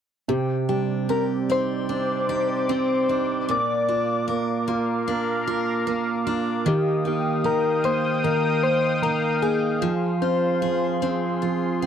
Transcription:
0.27 grand piano C3, steel-string acoustic guitar C3, soft synth lead G4, analog synth pad C5 D5 D6
0.69 grand piano G3, steel-string acoustic guitar D4, soft synth lead G4
1.09 grand piano C4, steel-string acoustic guitar G4, soft synth lead A#4
1.49 steel-string acoustic guitar C4, grand piano D#4, soft synth lead C5
1.89 grand piano C4, steel-string acoustic guitar D4
2.29 grand piano D#4, steel-string acoustic guitar G4
2.69 grand piano C4, steel-string acoustic guitar C4, soft synth lead C5
3.09 steel-string acoustic guitar D4, grand piano D#4
3.48 steel-string acoustic guitar A#2, grand piano A#3, analog synth pad A#4 F5, soft synth lead D5
3.88 steel-string acoustic guitar D4, grand piano F4
4.28 grand piano A#3, steel-string acoustic guitar A#4
4.68 steel-string acoustic guitar A#3, grand piano F4
5.08 grand piano A#3, steel-string acoustic guitar D4
5.47 grand piano F4, steel-string acoustic guitar A#4
5.87 grand piano A#3, steel-string acoustic guitar A#3
6.27 steel-string acoustic guitar D4, grand piano F4
6.66 grand piano D#3, steel-string acoustic guitar D#3, soft synth lead G4, analog synth pad F5 G5 D#6
7.05 grand piano A#3, steel-string acoustic guitar D#4, soft synth lead G4
7.44 grand piano D#3, steel-string acoustic guitar G4, soft synth lead A#4
7.84 steel-string acoustic guitar A#3, grand piano A#3, soft synth lead C5
8.24 grand piano D#3, steel-string acoustic guitar D#4, soft synth lead A#4
8.63 grand piano A#3, soft synth lead C5
9.02 grand piano D#3, steel-string acoustic guitar A#3, soft synth lead A#4
9.42 grand piano A#3, steel-string acoustic guitar D#4, soft synth lead G#4
9.82 grand piano F3, steel-string acoustic guitar F3, analog synth pad G#4 C6
10.22 grand piano C4, steel-string acoustic guitar F4, soft synth lead C5
10.62 grand piano F3, steel-string acoustic guitar G#4
11.02 steel-string acoustic guitar C4, grand piano C4
11.42 grand piano F3, steel-string acoustic guitar F4
11.82 grand piano C4 G5, steel-string acoustic guitar G#4

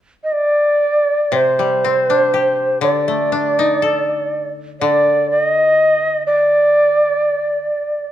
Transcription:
0.24 shakuhachi D#5
0.32 shakuhachi D5
1.32 koto C3, shakuhachi C5
1.59 koto G3
1.84 koto C4
2.10 koto D4
2.34 koto G4
2.81 koto D3, shakuhachi D5
3.08 koto A3
3.32 koto D4
3.59 koto D#4
3.82 koto A4
4.81 koto D3, shakuhachi D5
5.31 shakuhachi D5
5.43 shakuhachi D#5
6.26 shakuhachi D5

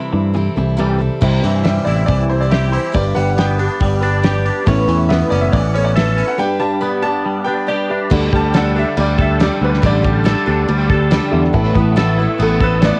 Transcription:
Already playing: steel-string acoustic guitar C3 E3 G3 C4 E4 A4, grand piano E4
0.13 picked electric bass G2, clean electric guitar C3 E3
0.34 clean electric guitar C3 E3, steel-string acoustic guitar G3 C4 E4 A4
0.56 picked electric bass C2, clean electric guitar C3 E3, steel-string acoustic guitar G3 C4 E4 A4
0.77 steel-string acoustic guitar C3 E3 G3 C4 E4 A4
0.98 clean electric guitar C3 E3, steel-string acoustic guitar G3 C4 E4 A4
1.21 picked electric bass C2, steel-string acoustic guitar C3 E3 G3 C4 E4 C5, kick, crash
1.42 picked electric bass G2, clean electric guitar E3, steel-string acoustic guitar G3 C4 E4 C5, open hi-hat
1.63 steel-string acoustic guitar G3 C4 E4 C5, grand piano E5, snare, open hi-hat
1.85 picked electric bass A1, steel-string acoustic guitar G3 C4 E4 C5, grand piano D5, open hi-hat
1.96 grand piano E5
2.06 picked electric bass C2, clean electric guitar E3, grand piano D5, kick, open hi-hat
2.28 steel-string acoustic guitar G3 C4 E4 C5, grand piano C5, open hi-hat
2.41 grand piano D5
2.50 steel-string acoustic guitar G3 C4 E4 C5, clean electric guitar G4, grand piano E5, snare, open hi-hat
2.72 clean electric guitar E4, grand piano C5, open hi-hat
2.92 picked electric bass G1, clean electric guitar G2, steel-string acoustic guitar G3 D4 G4 B4, grand piano D5, kick, open hi-hat
3.15 picked electric bass G1, clean electric guitar G3, steel-string acoustic guitar D4 G4 B4, grand piano F#5, open hi-hat
3.30 grand piano F#5
3.37 steel-string acoustic guitar G3 D4 G4 B4, clean electric guitar B3, grand piano G5, snare, open hi-hat
3.58 steel-string acoustic guitar D4 G4 B4, open hi-hat
3.80 picked electric bass G1, clean electric guitar G3, kick, open hi-hat
4.01 steel-string acoustic guitar D4 G4 B4, pedal steel guitar D5, open hi-hat
4.22 steel-string acoustic guitar G3 D4 G4 B4, snare, open hi-hat
4.45 clean electric guitar D4, open hi-hat
4.66 picked electric bass A1, steel-string acoustic guitar A2 E3 B3 C#4 E4 B4, upright piano A4 B4 C#5, pedal steel guitar C#5, kick, open hi-hat
4.87 picked electric bass E2, clean electric guitar E3, steel-string acoustic guitar B3 C#4 E4 B4, open hi-hat
5.09 steel-string acoustic guitar B3 C#4 E4 B4, grand piano E5, snare, open hi-hat
5.30 picked electric bass F#1, steel-string acoustic guitar C#4 E4 B4, grand piano D5, open hi-hat
5.34 steel-string acoustic guitar B3
5.41 grand piano E5
5.52 picked electric bass A1, clean electric guitar E3, grand piano D5, kick, open hi-hat
5.74 steel-string acoustic guitar B3 C#4 E4 B4, upright piano A4 B4 C#5, grand piano C#5, open hi-hat
5.84 grand piano D5
5.95 steel-string acoustic guitar B3 C#4 E4, clean electric guitar A4, grand piano E5, snare, open hi-hat
6.00 steel-string acoustic guitar B4
6.17 clean electric guitar C#4, open hi-hat
6.28 grand piano F#5
6.38 clean electric guitar G2, steel-string acoustic guitar G3 D4 G4 B4, upright piano G4 B4 D5, grand piano G5
6.59 clean electric guitar G3, steel-string acoustic guitar D4 G4 B4, grand piano A5
6.81 steel-string acoustic guitar G3 D4 G4 B4, clean electric guitar B3, grand piano B5
7.02 steel-string acoustic guitar D4 G4 B4, grand piano A5
7.25 clean electric guitar G3
7.44 steel-string acoustic guitar D4 G4 B4, grand piano G5
7.67 steel-string acoustic guitar G3 D4 G4 B4, grand piano D5
7.90 clean electric guitar D4, upright piano G4 B4 E5
8.10 picked electric bass D2, steel-string acoustic guitar D3 G3 D4 G4 A4, upright piano D4 G4 A4 D5, kick, crash
8.31 picked electric bass D2, clean electric guitar G3, steel-string acoustic guitar D4 G4 A4, kick
8.35 grand piano A5
8.53 steel-string acoustic guitar D3 G3 D4 G4 A4, grand piano F#5, snare, crash
8.76 steel-string acoustic guitar D4 G4 A4, grand piano E5
8.97 picked electric bass D2, steel-string acoustic guitar G3 D4 G4 A4, grand piano D5, crash
9.18 steel-string acoustic guitar D4 G4 A4, grand piano E5, kick
9.40 steel-string acoustic guitar D3 G3 D4 G4 A4, grand piano D5, snare, crash
9.62 picked electric bass D2, clean electric guitar D3, grand piano B4
9.74 snare
9.82 picked electric bass A1, steel-string acoustic guitar D3 G3 D4 G4 A4, kick, crash
9.86 grand piano D5
10.03 clean electric guitar G3, steel-string acoustic guitar D4 G4 A4, kick
10.24 steel-string acoustic guitar D3 G3 D4 G4 A4, snare, crash
10.46 picked electric bass D2, steel-string acoustic guitar D4 G4 A4
10.68 picked electric bass D2, steel-string acoustic guitar G3 D4 G4 A4, crash
10.90 steel-string acoustic guitar D4 G4 A4, kick
11.11 steel-string acoustic guitar D3 G3 D4 G4 A4, snare, crash
11.31 picked electric bass E2, clean electric guitar D3, upright piano D4 G4 A4 E5
11.45 snare
11.53 picked electric bass A1, steel-string acoustic guitar A2 E3 A3 E4 A4 B4, upright piano B3 A4 B4 E5, kick, crash
11.74 picked electric bass A1, clean electric guitar B3, steel-string acoustic guitar E4 A4 B4, kick
11.78 steel-string acoustic guitar A3
11.96 steel-string acoustic guitar A2 E3 A3 E4 A4 B4, snare, crash
12.18 steel-string acoustic guitar A3 E4 A4 B4
12.38 picked electric bass A1, steel-string acoustic guitar A3 E4 A4 B4, clean electric guitar B3, crash
12.42 grand piano A4
12.60 steel-string acoustic guitar A3 E4 A4 B4, grand piano B4, kick
12.81 steel-string acoustic guitar A2 E3 A3 E4 A4 B4, clean electric guitar B3, grand piano C#5, snare, crash
12.85 grand piano D5

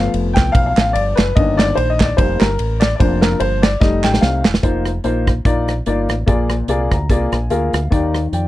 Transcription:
Already playing: upright piano F3 A3 B3 F5
0.14 fingered electric bass F1, ride
0.33 fingered electric bass C2, upright piano G5, kick, snare, clap, ride
0.52 fingered electric bass B1, upright piano F5, kick, ride
0.66 upright piano F5
0.77 fingered electric bass A1, upright piano F5, snare, clap, ride
0.93 fingered electric bass G1, upright piano D5, ride
1.15 fingered electric bass F#1, upright piano B4, snare, clap, ride
1.36 fingered electric bass G1, upright piano D#3 A#3 D4 D#5, kick, ride
1.57 upright piano D5, snare, clap, ride
1.75 fingered electric bass A#1, upright piano C5, ride
1.90 upright piano D#5
2.00 upright piano D5, kick, snare, clap, ride
2.17 fingered electric bass F1, upright piano G3 A#3 D#4 C5, kick, ride
2.40 fingered electric bass G1, upright piano A#4, snare, clap, ride
2.59 fingered electric bass A1, ride
2.80 upright piano D5, snare, clap, ride
2.96 upright piano C5 D5
3.00 fingered electric bass F1, upright piano F3 A#3 D4, kick, ride
3.21 upright piano A#4, snare, clap, ride
3.40 fingered electric bass G1, upright piano C5, ride
3.62 upright piano D5, snare, clap, ride
3.80 fingered electric bass F1, upright piano G3 A3 D#4 D#5, kick, snare
4.03 fingered electric bass A1, upright piano G5, snare, clap
4.14 snare
4.21 fingered electric bass C2, upright piano F5, snare
4.45 fingered electric bass E1, snare, clap
4.54 snare
4.63 fingered electric bass F1, upright piano A#3 D#4 F4 C5, kick, closed hi-hat
4.85 cross-stick, closed hi-hat
5.04 fingered electric bass A#1, upright piano A#3 D#4 F4 C5, closed hi-hat
5.27 kick, cross-stick, closed hi-hat
5.45 fingered electric bass A#1, upright piano A#3 D#4 F4 D5, kick, closed hi-hat
5.68 cross-stick, closed hi-hat
5.86 fingered electric bass G1, upright piano A#3 D#4 F4 D5, closed hi-hat
6.09 fingered electric bass A1, cross-stick, closed hi-hat
6.26 fingered electric bass A#1, upright piano A#2 A#3 F4 G#4 D5, kick, closed hi-hat
6.50 cross-stick, closed hi-hat
6.68 fingered electric bass C2, upright piano A#3 F4 G#4 D5, closed hi-hat
6.91 fingered electric bass D2, upright piano A#5, kick, cross-stick, closed hi-hat
7.10 fingered electric bass C2, upright piano A#3 F4 G#4 D5 G#5, kick, closed hi-hat
7.32 fingered electric bass A#1, cross-stick, closed hi-hat
7.50 fingered electric bass D2, upright piano A#3 F4 G#4 A#4 F5, closed hi-hat
7.73 fingered electric bass D2, cross-stick, closed hi-hat
7.90 fingered electric bass D#2, upright piano D#3 A#3 D#4 G4 D5, kick, closed hi-hat
8.14 cross-stick, closed hi-hat
8.32 fingered electric bass F2, upright piano D5 G5, closed hi-hat

